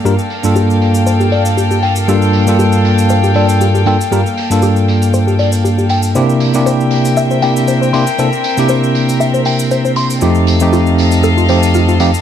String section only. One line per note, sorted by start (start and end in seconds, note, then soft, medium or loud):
0.00 6.12 A#3 medium
0.00 6.12 A4 medium
0.00 6.12 F5 medium
0.00 6.12 G5 medium
6.15 12.21 C4 medium
6.15 10.18 A#4 medium
6.15 10.18 E5 medium
6.15 10.18 G5 medium
10.22 12.21 A4 medium
10.22 12.21 D#5 medium
10.22 12.21 F5 medium